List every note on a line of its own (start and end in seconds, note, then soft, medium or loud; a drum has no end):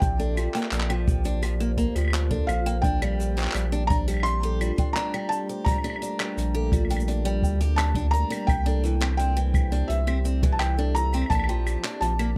0.00 0.48 A#1 medium
0.00 4.57 A#3 medium
0.00 1.15 C4 medium
0.00 1.15 G4 medium
0.00 0.12 G4 medium
0.00 4.34 D5 medium
0.00 1.15 E5 medium
0.00 1.38 G5 medium
0.00 kick loud
0.00 closed hi-hat medium
0.00 shaker medium
0.20 0.35 D4 loud
0.20 0.36 A4 loud
0.20 shaker soft
0.37 0.47 F3 medium
0.37 0.54 F4 medium
0.37 closed hi-hat soft
0.37 claves medium
0.37 shaker medium
0.48 4.06 F4 medium
0.54 0.65 A#3 medium
0.54 0.71 G5 loud
0.54 clap soft
0.54 closed hi-hat medium
0.54 shaker medium
0.63 clap soft
0.71 1.89 A#1 medium
0.71 0.88 A#3 medium
0.71 0.89 D5 loud
0.71 clap medium
0.71 closed hi-hat medium
0.71 shaker medium
0.76 5.10 C5 medium
0.80 clap medium
0.90 1.23 F3 loud
0.90 1.00 G5 medium
0.90 claves medium
0.90 shaker soft
1.08 1.24 G4 medium
1.08 kick loud
1.08 closed hi-hat soft
1.08 shaker medium
1.24 1.41 D4 loud
1.24 1.42 C5 medium
1.24 closed hi-hat medium
1.24 shaker medium
1.42 1.53 F3 medium
1.42 1.59 G4 loud
1.42 closed hi-hat medium
1.42 claves medium
1.42 shaker medium
1.60 1.70 A#3 loud
1.60 1.77 G4 medium
1.60 shaker soft
1.77 1.94 A#3 medium
1.77 1.95 D5 medium
1.77 kick medium
1.77 shaker medium
1.95 2.42 D2 medium
1.95 2.29 F3 medium
1.95 2.12 G4 medium
1.95 closed hi-hat medium
1.95 claves soft
1.95 shaker soft
1.98 claves soft
2.01 claves soft
2.05 claves soft
2.08 claves medium
2.10 2.23 G4 medium
2.10 clap medium
2.10 closed hi-hat medium
2.10 claves medium
2.10 shaker medium
2.31 2.47 D4 loud
2.31 2.48 A4 medium
2.31 kick loud
2.31 shaker soft
2.47 3.48 A#1 medium
2.47 2.59 F3 medium
2.47 2.65 F4 loud
2.47 2.84 F5 medium
2.47 claves medium
2.47 shaker medium
2.66 2.76 A#3 loud
2.66 2.83 G5 loud
2.66 closed hi-hat medium
2.66 shaker medium
2.82 8.49 G3 medium
2.82 3.00 D4 medium
2.82 3.01 D5 loud
2.82 3.92 G5 loud
2.82 kick loud
2.82 closed hi-hat medium
2.82 shaker medium
3.02 3.35 G3 loud
3.02 3.12 G5 medium
3.02 claves medium
3.02 shaker soft
3.20 3.37 G4 medium
3.20 closed hi-hat soft
3.20 shaker medium
3.31 9.62 D4 medium
3.37 3.53 G4 medium
3.37 3.54 C5 medium
3.37 clap soft
3.37 closed hi-hat medium
3.37 shaker medium
3.43 clap soft
3.47 clap medium
3.52 4.71 A#1 medium
3.52 3.64 G3 medium
3.52 clap medium
3.52 closed hi-hat medium
3.52 claves medium
3.56 3.72 G4 loud
3.56 shaker medium
3.72 3.82 D4 loud
3.72 3.90 G4 medium
3.72 shaker soft
3.87 4.06 D4 medium
3.87 3.95 A#5 loud
3.87 kick loud
3.87 closed hi-hat soft
3.87 shaker medium
3.91 4.07 D5 medium
4.08 4.41 G3 loud
4.08 4.25 G4 loud
4.08 closed hi-hat medium
4.08 claves soft
4.08 shaker medium
4.11 claves soft
4.14 claves soft
4.17 claves soft
4.20 claves medium
4.23 4.36 G4 medium
4.23 4.97 C6 loud
4.23 closed hi-hat medium
4.23 claves medium
4.23 shaker medium
4.34 9.62 A3 medium
4.43 4.59 G4 loud
4.43 4.60 A4 medium
4.43 shaker soft
4.61 4.71 G3 medium
4.61 4.78 F4 loud
4.61 claves medium
4.61 shaker medium
4.78 4.88 D4 loud
4.78 4.95 G5 medium
4.78 kick loud
4.78 closed hi-hat medium
4.78 shaker medium
4.93 5.12 D4 medium
4.93 5.27 A#5 medium
4.93 clap medium
4.93 closed hi-hat medium
4.93 shaker medium
4.97 5.13 D5 loud
5.14 5.47 G3 loud
5.14 5.24 G5 medium
5.14 claves medium
5.14 shaker soft
5.29 5.48 G4 medium
5.29 5.37 A5 loud
5.29 shaker loud
5.35 9.62 A#3 medium
5.49 5.65 G4 medium
5.49 5.66 C5 medium
5.49 shaker soft
5.65 5.76 G3 medium
5.65 5.84 G4 loud
5.65 7.03 A#5 medium
5.65 kick loud
5.65 closed hi-hat medium
5.65 claves soft
5.65 shaker medium
5.72 claves soft
5.78 claves soft
5.84 5.94 D4 loud
5.84 6.02 G4 medium
5.84 claves medium
5.84 shaker soft
5.90 claves medium
5.96 claves medium
6.02 6.18 D4 medium
6.02 6.19 D5 medium
6.02 closed hi-hat soft
6.02 shaker medium
6.20 6.53 G3 medium
6.20 6.37 G4 loud
6.20 clap medium
6.20 closed hi-hat medium
6.20 claves medium
6.20 shaker medium
6.37 7.42 A#1 medium
6.37 6.47 G4 medium
6.37 closed hi-hat medium
6.37 shaker medium
6.54 6.70 G4 loud
6.54 6.72 A4 loud
6.72 6.82 G3 medium
6.72 6.89 F4 loud
6.72 kick loud
6.72 closed hi-hat medium
6.72 claves soft
6.72 shaker medium
6.85 claves soft
6.90 7.00 D4 medium
6.90 7.07 G5 loud
6.90 closed hi-hat medium
6.90 shaker medium
6.97 claves medium
6.97 shaker medium
7.08 7.24 D4 medium
7.08 7.24 D5 medium
7.08 closed hi-hat medium
7.25 7.59 G3 loud
7.25 7.35 G5 medium
7.25 shaker soft
7.42 8.24 D2 loud
7.42 7.53 G5 loud
7.42 kick medium
7.42 shaker loud
7.61 7.76 G4 loud
7.61 7.77 G4 loud
7.61 closed hi-hat medium
7.61 shaker soft
7.76 7.88 G3 medium
7.76 7.95 G4 loud
7.76 8.14 A5 medium
7.76 clap medium
7.76 closed hi-hat medium
7.76 claves medium
7.76 shaker medium
7.95 8.06 D4 medium
7.95 8.13 D4 medium
7.95 kick loud
7.95 shaker soft
8.11 8.29 D4 medium
8.11 8.30 A#4 loud
8.11 8.49 A#5 loud
8.11 shaker medium
8.30 8.48 G3 loud
8.30 8.48 A#4 loud
8.30 closed hi-hat medium
8.30 claves medium
8.30 shaker medium
8.47 9.83 C2 loud
8.47 12.38 C4 medium
8.47 8.59 G4 medium
8.47 9.14 G5 loud
8.47 kick loud
8.47 closed hi-hat medium
8.47 claves medium
8.47 shaker medium
8.66 8.82 D4 loud
8.66 8.84 A4 medium
8.66 shaker soft
8.84 8.94 E3 medium
8.84 9.01 E4 loud
8.84 closed hi-hat soft
8.84 shaker medium
9.01 9.11 C4 medium
9.01 9.19 G5 loud
9.01 clap medium
9.01 closed hi-hat medium
9.01 claves medium
9.01 shaker soft
9.17 9.35 C4 medium
9.17 9.36 D5 loud
9.17 9.91 G5 loud
9.17 closed hi-hat medium
9.17 shaker medium
9.34 9.70 E3 loud
9.34 12.38 G4 medium
9.34 9.47 G5 medium
9.34 shaker soft
9.45 12.38 E5 medium
9.54 9.71 G4 medium
9.54 kick loud
9.54 closed hi-hat soft
9.54 claves medium
9.54 shaker medium
9.72 9.88 D4 medium
9.72 9.82 G4 loud
9.72 12.38 D5 medium
9.72 closed hi-hat medium
9.88 11.24 C2 medium
9.88 10.00 E3 medium
9.88 10.07 G4 loud
9.88 10.22 E5 medium
9.88 closed hi-hat medium
9.88 shaker medium
10.07 10.17 C4 medium
10.07 10.25 G4 medium
10.07 claves medium
10.07 shaker soft
10.25 10.41 C4 medium
10.25 10.42 D5 medium
10.25 shaker medium
10.43 10.76 E3 loud
10.43 10.60 G4 medium
10.43 kick loud
10.43 closed hi-hat soft
10.43 shaker medium
10.52 10.60 A5 medium
10.59 10.71 G4 medium
10.59 10.96 G5 loud
10.59 clap medium
10.59 closed hi-hat medium
10.59 claves medium
10.59 shaker medium
10.77 10.94 D4 loud
10.77 10.94 A4 loud
10.77 shaker soft
10.95 11.06 E3 medium
10.95 11.13 E4 loud
10.95 11.28 A#5 loud
10.95 shaker loud
11.13 11.24 C4 loud
11.13 11.30 G5 loud
11.13 closed hi-hat medium
11.13 claves soft
11.13 shaker soft
11.17 claves soft
11.22 claves soft
11.26 11.99 A5 loud
11.26 claves medium
11.30 11.77 A#1 medium
11.30 12.38 A#3 medium
11.30 11.47 A#3 medium
11.30 11.48 D5 loud
11.30 kick loud
11.30 closed hi-hat medium
11.30 claves medium
11.30 shaker medium
11.35 claves medium
11.40 claves medium
11.44 claves medium
11.49 11.82 F3 loud
11.49 11.59 G5 medium
11.49 shaker soft
11.66 11.83 G4 medium
11.66 closed hi-hat soft
11.66 claves medium
11.66 shaker medium
11.71 12.38 F4 medium
11.84 12.00 D4 loud
11.84 11.94 G4 medium
11.84 clap medium
11.84 closed hi-hat medium
12.01 12.38 A#1 medium
12.01 12.12 F3 medium
12.01 12.18 G4 loud
12.01 12.38 A5 loud
12.01 closed hi-hat medium
12.01 shaker medium
12.19 12.29 A#3 loud
12.19 12.36 G4 medium
12.19 claves medium
12.19 shaker soft